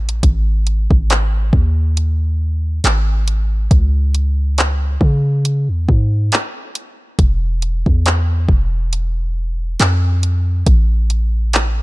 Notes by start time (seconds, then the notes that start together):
0.03 A1
0.09 closed hi-hat
0.23 G#1, kick, closed hi-hat
0.67 closed hi-hat
0.91 G#1, kick
1.10 clap, closed hi-hat
1.53 D#2, kick
1.97 closed hi-hat
2.84 G#1, clap, closed hi-hat
3.28 closed hi-hat
3.71 C#2, kick, closed hi-hat
4.15 closed hi-hat
4.58 clap, closed hi-hat
5.01 C#3, kick
5.45 closed hi-hat
5.69 E2
5.89 G#2, kick
6.32 clap, closed hi-hat
6.75 closed hi-hat
7.19 E1, kick, closed hi-hat
7.62 closed hi-hat
7.86 E2, kick
8.06 clap, closed hi-hat
8.49 E1, kick
8.93 closed hi-hat
9.80 F2, clap, closed hi-hat
10.23 closed hi-hat
10.66 A1, kick, closed hi-hat
11.10 closed hi-hat
11.53 clap, closed hi-hat